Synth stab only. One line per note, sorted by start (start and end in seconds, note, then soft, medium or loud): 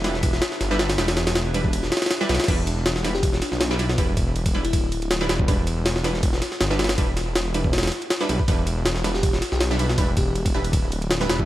0.04 0.40 G3 medium
0.04 0.40 D4 medium
0.04 0.40 E4 medium
0.04 0.40 B4 medium
0.71 0.78 G3 loud
0.71 0.78 D4 medium
0.71 0.78 E4 medium
0.71 0.78 B4 loud
0.79 0.90 G3 medium
0.79 0.90 D4 medium
0.79 0.90 E4 medium
0.79 0.90 B4 loud
0.98 1.09 G3 medium
0.98 1.09 D4 medium
0.98 1.09 E4 medium
0.98 1.09 B4 medium
1.54 1.90 G3 medium
1.54 1.90 D4 medium
1.54 1.90 E4 medium
1.54 1.90 B4 medium
2.21 2.28 G3 loud
2.21 2.28 D4 medium
2.21 2.28 E4 medium
2.21 2.28 B4 loud
2.29 2.40 G3 medium
2.29 2.40 D4 medium
2.29 2.40 E4 medium
2.29 2.40 B4 loud
2.48 2.59 G3 medium
2.48 2.59 D4 medium
2.48 2.59 E4 medium
2.48 2.59 B4 medium
3.04 3.40 G3 medium
3.04 3.40 D4 medium
3.04 3.40 E4 medium
3.04 3.40 B4 medium
3.71 3.78 G3 loud
3.71 3.78 D4 medium
3.71 3.78 E4 medium
3.71 3.78 B4 loud
3.79 3.90 G3 medium
3.79 3.90 D4 medium
3.79 3.90 E4 medium
3.79 3.90 B4 loud
3.98 4.09 G3 medium
3.98 4.09 D4 medium
3.98 4.09 E4 medium
3.98 4.09 B4 loud
4.54 4.90 G3 medium
4.54 4.90 D4 medium
4.54 4.90 E4 medium
4.54 4.90 B4 medium
5.21 5.28 G3 loud
5.21 5.28 D4 medium
5.21 5.28 E4 medium
5.21 5.28 B4 loud
5.29 5.40 G3 medium
5.29 5.40 D4 medium
5.29 5.40 E4 medium
5.29 5.40 B4 loud
5.48 5.59 G3 medium
5.48 5.59 D4 medium
5.48 5.59 E4 medium
5.48 5.59 B4 medium
6.04 6.40 G3 medium
6.04 6.40 D4 medium
6.04 6.40 E4 medium
6.04 6.40 B4 medium
6.70 6.78 G3 loud
6.70 6.78 D4 medium
6.70 6.78 E4 medium
6.70 6.78 B4 loud
6.79 6.90 G3 medium
6.79 6.90 D4 medium
6.79 6.90 E4 medium
6.79 6.90 B4 loud
6.98 7.09 G3 medium
6.98 7.09 D4 medium
6.98 7.09 E4 medium
6.98 7.09 B4 medium
7.54 7.90 G3 medium
7.54 7.90 D4 medium
7.54 7.90 E4 medium
7.54 7.90 B4 medium
8.21 8.28 G3 loud
8.21 8.28 D4 medium
8.21 8.28 E4 loud
8.21 8.28 B4 loud
8.29 8.40 G3 medium
8.29 8.40 D4 medium
8.29 8.40 E4 medium
8.29 8.40 B4 loud
8.48 8.59 G3 medium
8.48 8.59 D4 medium
8.48 8.59 E4 medium
8.48 8.59 B4 medium
9.04 9.40 G3 medium
9.04 9.40 D4 medium
9.04 9.40 E4 medium
9.04 9.40 B4 medium
9.71 9.78 G3 loud
9.71 9.78 D4 medium
9.71 9.78 E4 medium
9.71 9.78 B4 loud
9.79 9.90 G3 medium
9.79 9.90 D4 medium
9.79 9.90 E4 medium
9.79 9.90 B4 loud
9.98 10.09 G3 medium
9.98 10.09 D4 medium
9.98 10.09 E4 medium
9.98 10.09 B4 medium
10.54 10.90 G3 medium
10.54 10.90 D4 medium
10.54 10.90 E4 medium
10.54 10.90 B4 medium
11.21 11.28 G3 loud
11.21 11.28 D4 medium
11.21 11.28 E4 medium
11.21 11.28 B4 loud
11.29 11.40 G3 medium
11.29 11.40 D4 medium
11.29 11.40 E4 medium
11.29 11.40 B4 loud